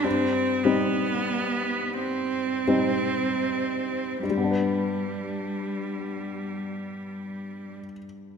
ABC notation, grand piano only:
X:1
M:6/8
L:1/8
Q:3/8=29
K:G
V:1 name="Grand piano"
G,, [G,C_E]3 [G,CE]2 | [G,,G,B,DB]6 |]